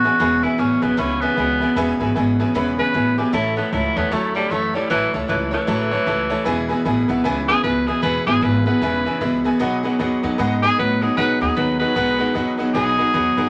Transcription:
Already playing: F#4
0.04 E2 B2 B3 C#4 G#4 B4 E5 G#5
0.19 E1 E2 B2 C#3 E3 B3 C#4 G#4 B4 E5 G#5
0.43 E2 B2 B3 C#4 E4 G#4 B4 E5 G#5
0.58 A1 E2 B2 B3 C#4 G#4 B4 E5 G#5
0.82 B1 E2 B2 B3 C#4 G#4 B4 E5 G#5
0.97 C#2 E2 C#3 E3 B3 C#4 G#4 B4 E5 B5
1.21 E2 C#3 B3 C#4 G#4 B4 E5 G#5
1.36 C#2 E2 B2 B3 C#4 G#4 B4 E5 G#5
1.61 E2 B2 B3 C#4 G#4 B4 E5 G#5
1.76 E1 E2 B2 C#3 E3 B3 C#4 G#4 B4 E5 G#5
2.00 G#1 E2 B2 B3 C#4 G#4 B4 E5 G#5
2.15 G#1 E2 B2 B3 C#4 G#4 B4 E5 G#5
2.40 E2 B2 B3 C#4 G#4 B4 E5 G#5
2.54 E1 E2 C#3 E3 B3 C#4 G#4 B4 E5 B5
2.78 E2 C#3 B3 C#4 G#4 B4 E5 G#5
2.94 A1 E2 B2 B3 C#4 G#4 B4 E5 G#5
3.17 E2 B2 B3 C#4 G4 G#4 B4 E5 G#5
3.33 A1 A2 E3 F#3 A3 E4 A4 C#5 E5 A5
3.56 A2 E3 B3 E4 A4 C#5 E5 A5
3.72 C#2 A2 E3 F#3 E4 A4 C#5 E5 A5
3.96 E2 A2 E3 B3 E4 A4 C#5 E5 A5
4.11 F#2 A2 F#3 A3 E4 A4 C#5 E5 A5
4.35 A2 F#3 G3 E4 A4 C#5 E5 A5
4.50 F#2 A2 E3 F#3 A3 E4 A4 C#5 E5 A5
4.74 A2 E3 G3 E4 A4 C#5 E5 A5
4.90 A1 A2 E3 F#3 A3 E4 A4 C#5 E5 A5
5.14 C#2 A2 E3 E4 A4 C#5 E5 A5
5.28 C#2 A2 E3 F#3 E4 A4 C#5 E5 A5
5.51 A2 E3 E4 A4 C#5 E5 A5
5.67 A1 A2 F#3 A3 E4 A4 C#5 E5 A5
5.91 A2 F#3 E4 A4 C#5 E5 A5
6.06 C#2 A2 E3 F#3 E4 A4 C#5 E5 A5
6.30 A2 E3 E4 A4 C#5 E5 A5
6.45 E1 E2 B2 C#3 E3 B3 E4 G#4 B4 E5 G#5
6.69 E2 B2 B3 E4 G#4 B4 E5 G#5
6.85 A1 E2 B2 B3 E4 G#4 B4 E5 G#5
7.08 B1 E2 B2 B3 E4 G#4 B4 E5 F#5
7.24 C#2 E2 C#3 E3 B3 E4 G#4 B4 E5 G#5
7.48 E2 C#3 B3 E4 G#4 B4 E5 G#5
7.64 C#2 E2 B2 B3 E4 G#4 B4 E5 G#5
7.87 E2 B2 B3 E4 G#4 B4 E5 G#5
8.02 E1 E2 B2 C#3 E3 B3 E4 G#4 B4 E5 G#5
8.26 G#1 E2 B2 B3 E4 G#4 B4 E5 G#5
8.41 G#1 E2 B2 B3 E4 G#4 B4 E5 G#5
8.66 E2 B2 B3 E4 G#4 B4 E5 F#5
8.81 E1 E2 C#3 E3 B3 E4 G#4 B4 E5 G#5
9.05 E2 C#3 B3 E4 G#4 B4 E5 G#5
9.21 C#2 E2 B2 B3 E4 G#4 B4 E5 B5
9.44 E2 B2 B3 E4 G#4 B4 E5 G#5
9.59 B1 B2 F#3 B3 D#4 F#4 G#4 B4 D#5 F#5
9.83 B2 F#3 D#4 F#4 G#4 B4 D#5 F#5
9.99 E2 B2 F#3 B3 D#4 F#4 G#4 B4 D#5 F#5
10.23 F#2 B2 F#3 D#4 F#4 G#4 B4 D#5 F#5
10.38 G#2 B2 G#3 B3 D#4 F#4 G#4 B4 D#5 F#5
10.62 B2 G#3 D#4 F#4 G#4 B4 D#5 G#5
10.78 A2 B2 F#3 B3 D#4 F#4 G#4 B4 D#5 F#5
11.01 B2 F#3 D#4 F#4 G#4 B4 D#5 F#5
11.17 B1 B2 F#3 B3 D#4 F#4 G#4 B4 D#5 F#5
11.40 D#2 B2 F#3 D#4 F#4 G#4 B4 D#5 F#5
11.55 D#2 B2 F#3 B3 D#4 F#4 G#4 B4 D#5 F#5
11.79 B2 F#3 D#4 F#4 G#4 B4 D#5 F#5
11.95 B1 B2 G#3 B3 D#4 F#4 G#4 B4 D#5 F#5
12.19 B2 G#3 D#4 F#4 G#4 B4 D#5 F#5
12.34 E2 B2 F#3 B3 D#4 F#4 G#4 B4 D#5 F#5
12.58 B2 F#3 D#4 F#4 G#4 B4 D#5 F#5
12.74 B1 B2 F#3 B3 D#4 F#4 G#4 B4 D#5 G#5
12.98 B2 F#3 D#4 F#4 G#4 B4 D#5 F#5
13.14 E2 B2 F#3 B3 D#4 F#4 G#4 B4 D#5 F#5
13.37 F#2 B2 F#3 D#4 F#4 G#4 B4 D#5 F#5

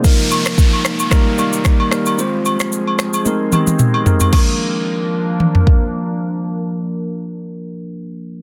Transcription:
0.03 D#3 F3 A#3 D#4 F4 A#4, kick, downlifter, shaker
0.31 high agogo, shaker
0.46 finger snap, cross-stick, shaker
0.58 kick, shaker
0.73 high agogo
0.85 finger snap, cross-stick, shaker
0.99 high agogo, shaker
1.10 G3 A#3 D#4 G4 A#4, finger snap, kick, cross-stick, shaker
1.37 G3 A#3 D#4 A#4, high agogo, shaker
1.53 shaker
1.65 finger snap, kick, cross-stick, shaker
1.80 high agogo
1.91 G3 A#3 D#4 A#4, finger snap, cross-stick, shaker
2.06 high agogo, shaker
2.17 F3 G#3 C4 F4 G#4 C5, shaker
2.45 high agogo, shaker
2.60 finger snap, cross-stick, shaker
2.72 shaker
2.87 high agogo
2.99 finger snap, cross-stick, shaker
3.13 high agogo, shaker
3.25 D#3 G#3 A#3 C4 D#4 A#4, high tom, shaker
3.52 G#3 B3 D#4 G4, mid tom, high agogo, shaker
3.59 C4
3.67 mid tom, shaker
3.79 mid tom, shaker
3.94 high agogo
4.05 G#3 C4 D#4 A#4, floor tom, shaker
4.20 floor tom, high agogo, shaker
4.28 F3 A#3
4.33 F3 A#3 D4 A#4, kick, crash, high agogo
4.38 A#4
5.40 mid tom
5.55 floor tom
5.67 kick

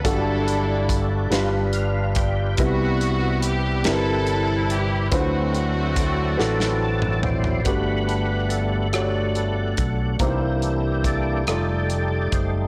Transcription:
0.04 G1 G2 F#3 D4 F#4 A4, kick, closed hi-hat
0.09 G3 D4 E4 A4
0.48 closed hi-hat
0.89 kick, closed hi-hat
1.31 G1 G2 G3 D4 F4 A#4 B4, snare, closed hi-hat
1.39 B4
1.73 F5, closed hi-hat
2.15 G5, kick, closed hi-hat
2.57 C2 C3 G3 B3 E4 A#4 B4, kick, closed hi-hat
2.62 B3 F#4 B4
3.01 closed hi-hat
3.42 closed hi-hat
3.47 G4
3.84 G1 G3 C4 E4 A#4, snare, closed hi-hat
3.90 E4 A4 B4
4.27 closed hi-hat
4.70 G4, closed hi-hat
5.11 D2 D3 F#3 C4 E4 F4 B4 C5, kick, closed hi-hat
5.17 A3 C4 F#4
5.55 closed hi-hat
5.95 F#4 A4 D5, kick, closed hi-hat
6.37 A1 E4 F#4 A4 B4, snare
6.60 snare
6.82 A5
7.02 mid tom
7.23 C5 D5, floor tom
7.44 floor tom
7.64 G1 G2 G3 A3 B3 D4 F#4 G4 B4 F#5, kick, closed hi-hat
7.68 B4
8.09 closed hi-hat
8.49 A4, closed hi-hat
8.93 A3 D4 F#4 G4 A4 C#5 F#5, cross-stick, closed hi-hat
9.01 D5
9.35 G3 A3 B3, closed hi-hat
9.77 B1, kick, closed hi-hat
10.19 C2 C3 E3 A#3 D4 D#4 E4 G4 C5, kick, closed hi-hat
10.27 E4
10.62 closed hi-hat
11.04 G4 A4 D5, kick, closed hi-hat
11.47 F1 G3 A3 D#4 F4 A4, cross-stick, closed hi-hat
11.90 closed hi-hat
12.31 F#1 C5, kick, closed hi-hat

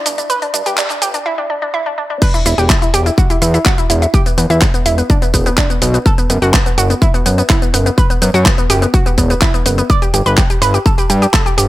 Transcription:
0.06 G1 D4, open hi-hat, shaker
0.18 D4, closed hi-hat, shaker
0.30 B4, closed hi-hat, shaker
0.42 D4, closed hi-hat
0.54 G2 D4, open hi-hat, shaker
0.66 G2 G4, closed hi-hat, shaker
0.77 D4, clap, closed hi-hat, shaker
0.90 D4, clap, closed hi-hat, shaker
1.02 G1 G4, open hi-hat, shaker
1.14 D4, closed hi-hat, shaker
1.26 E4
1.38 D4
1.50 D4
1.62 D4
1.74 E4
1.86 D4
1.98 D4
2.10 D4
2.22 B4, kick, closed hi-hat, crash, shaker
2.34 E4, closed hi-hat, shaker
2.46 E1 E4, open hi-hat, shaker
2.58 E1 G4, closed hi-hat, shaker
2.69 E4, kick, clap, closed hi-hat, shaker
2.82 E4, closed hi-hat, shaker
2.94 E1 G4, open hi-hat, shaker
3.06 E4, closed hi-hat, shaker
3.18 F#4, kick, closed hi-hat, shaker
3.30 E4, closed hi-hat, shaker
3.42 E2 E4, open hi-hat, shaker
3.54 E4, closed hi-hat, shaker
3.65 F#4, kick, clap, closed hi-hat, shaker
3.78 E4, closed hi-hat, shaker
3.90 E1 E4, open hi-hat, shaker
4.02 E4, closed hi-hat, shaker
4.14 G4, kick, closed hi-hat, shaker
4.26 B3, closed hi-hat, shaker
4.38 E2 B3, open hi-hat, shaker
4.50 E2 E4, closed hi-hat, shaker
4.61 B3, kick, clap, closed hi-hat, shaker
4.74 B3, closed hi-hat, shaker
4.86 E1 E4, open hi-hat, shaker
4.98 B3, closed hi-hat, shaker
5.10 D4, kick, closed hi-hat, shaker
5.22 B3, closed hi-hat, shaker
5.34 E1 B3, kick, open hi-hat, shaker
5.46 B3, closed hi-hat, shaker
5.57 D4, kick, clap, closed hi-hat, shaker
5.70 B3, closed hi-hat, shaker
5.82 B1 B3, open hi-hat, shaker
5.94 B3, closed hi-hat, shaker
6.06 A4, kick, closed hi-hat, shaker
6.18 B3, closed hi-hat, shaker
6.30 F#1 B3, open hi-hat, shaker
6.42 F#1 F#4, closed hi-hat, shaker
6.53 B3, kick, clap, closed hi-hat, shaker
6.66 B3, closed hi-hat, shaker
6.78 F#1 F#4, open hi-hat, shaker
6.90 B3, closed hi-hat, shaker
7.02 E4, kick, closed hi-hat, shaker
7.14 B3, closed hi-hat, shaker
7.26 F#2 B3, open hi-hat, shaker
7.38 B3, closed hi-hat, shaker
7.50 E4, kick, clap, closed hi-hat, shaker
7.62 B3, closed hi-hat, shaker
7.74 F#1 B3, open hi-hat, shaker
7.86 B3, closed hi-hat, shaker
7.98 B4, kick, closed hi-hat, shaker
8.10 B3, closed hi-hat, shaker
8.22 F#2 B3, open hi-hat, shaker
8.34 F#2 F#4, closed hi-hat, shaker
8.45 B3, kick, clap, closed hi-hat, shaker
8.58 B3, closed hi-hat, shaker
8.70 F#1 G4, open hi-hat, shaker
8.82 B3, closed hi-hat, shaker
8.94 F#4, kick, closed hi-hat, shaker
9.06 B3, closed hi-hat, shaker
9.18 E1 B3, kick, open hi-hat, shaker
9.30 B3, closed hi-hat, shaker
9.41 E4, kick, clap, closed hi-hat, shaker
9.54 B3, closed hi-hat, shaker
9.66 F#1 B3, open hi-hat, shaker
9.78 B3, closed hi-hat, shaker
9.90 D5, kick, closed hi-hat, shaker
10.02 G4, closed hi-hat, shaker
10.14 G1 G4, open hi-hat, shaker
10.26 G1 B4, closed hi-hat, shaker
10.37 G4, kick, clap, closed hi-hat, shaker
10.50 G4, closed hi-hat, shaker
10.62 G1 B4, open hi-hat, shaker
10.74 G4, closed hi-hat, shaker
10.86 A4, kick, closed hi-hat, shaker
10.98 G4, closed hi-hat, shaker
11.10 G2 G4, open hi-hat, shaker
11.22 G4, closed hi-hat, shaker
11.33 A4, kick, clap, closed hi-hat, shaker
11.46 G4, closed hi-hat, shaker
11.58 G1 G4, open hi-hat, shaker

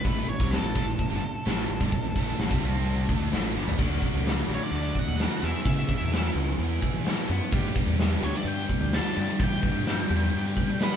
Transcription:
Already playing: B4
0.04 A1 A2 E3 A3, kick, open hi-hat
0.28 A1 A2 E3 C#5
0.40 C2 C3 G3 C4, kick
0.51 A4, snare, open hi-hat
0.62 A1 A2 E3
0.75 A1 A2 E3, kick
0.86 A1 A2 E3
0.98 A1 A2 E3, kick, open hi-hat
1.10 G1 G2 D3
1.22 muted fingered electric bass stroke, muted overdriven electric guitar stroke
1.45 A1 A2 E3 A3, snare, open hi-hat
1.68 A1 A2 E3
1.81 G1 G2 D3, kick
1.92 muted fingered electric bass stroke, muted overdriven electric guitar stroke, kick, open hi-hat
2.03 A1 A2 E3
2.16 A1 A2 E3 A3, kick
2.38 A1 A2 E3, snare, open hi-hat
2.51 C2 C3 G3, kick
2.62 C2 C3 G3 C4
2.86 open hi-hat
3.09 D2 D3 A3 D4, kick
3.32 A1 A2 E3 A3, snare, open hi-hat
3.55 G1 G2 D3, snare
3.67 E2 E3 B3, floor tom
3.77 D2 D3 F#3 A3 D4 F#4, kick, crash
4.02 kick
4.14 C#2
4.26 snare, open hi-hat
4.47 A1 D3 F#3 A3 D4 F#4
4.54 C#5
4.64 D5
4.71 D2, open hi-hat
4.76 D5
4.95 F#5, kick
5.07 D#2
5.18 D3 F#3 A3 D4 F#4, snare, open hi-hat
5.40 E2 B2 E3 G#3 B3 E4 G#4 E5
5.65 C#3 E5, kick, open hi-hat
5.89 kick
6.01 E2
6.11 E2 B2 E3 B3 E4 G#4, snare, open hi-hat
6.35 C#2
6.58 E2, open hi-hat
6.81 E2 B2 E3 B3 E4 G#4, kick
6.94 E3
7.04 E2 B2 E3 G#3 B3 G#4, snare, open hi-hat
7.29 F#2
7.51 G2 D3 G3 B3 D4 G4, kick, open hi-hat
7.76 kick
7.86 E2
7.98 snare, open hi-hat
8.21 D2 G2 D3 G3 B3 D4 G4 C#5
8.36 D5
8.44 G2 G5, open hi-hat
8.69 kick
8.80 D2
8.92 G2 D3 G3 B3 D4 A5, snare, open hi-hat
8.96 G4
9.15 G2 D3 G3 B3 D4 G4
9.38 G2 D3 E3 G3 B3 D4 G4, kick, open hi-hat
9.43 G5
9.63 kick
9.74 G2
9.86 snare, open hi-hat
10.09 E2 G2 D3 G3 B3 D4 G4
10.33 G2, open hi-hat
10.57 kick
10.70 G3
10.79 G2 D3 G3 B3 D4 G4 B4 F#5, snare, open hi-hat

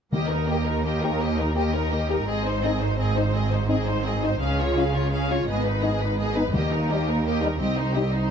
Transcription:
0.13 D#2 D#3 A#3 G4 D#5
0.30 D#4 A#4
0.47 A#3 G4 D#5
0.66 D#4 A#4
0.84 A#3 G4 D#5
1.02 A#3 D#4 G4 A#4
1.20 A#3 G4 D#5
1.38 D#4 A#4
1.55 A#3 G4 D#5
1.74 D#4 A#4
1.91 A#3 G4 D#5
2.09 A#3 D#4 G4 A#4
2.27 G#1 G#2 C4 G#4 D#5
2.45 D#4 C5
2.63 C4 D#4 G#4 D#5
2.81 D#4 C5
2.99 C4 G#4 D#5
3.15 C4 D#4 C5
3.34 C4 G#4 D#5
3.51 D#4 C5
3.68 C4 D#4 G#4 D#5
3.86 D#4 C5
4.04 C4 G#4 D#5
4.23 C4 D#4 C5
4.40 C#2 C#3 C#4 G#4 F5
4.59 F4 C#5
4.76 C#4 F4 G#4 F5
4.94 F4 C#5
5.12 C#4 G#4 F5
5.30 C#4 F4 C#5
5.47 G#1 G#2 B3 G#4 D#5
5.64 D#4 B4
5.82 B3 D#4 G#4 D#5
6.01 D#4 B4
6.19 B3 G#4 D#5
6.36 B3 D#4 B4
6.53 D#2 D#3 A#3 G4 D#5
6.72 D#4 A#4
6.89 G3 A#3 D#4 G4 D#5
7.07 D#4 A#4
7.25 A#3 G4 D#5
7.41 G3 D#4 A#4
7.59 C2 C4 G4 D#5
7.77 D#4 C5
7.94 G3 C4 D#4 G4 D#5
8.12 D#4 C5

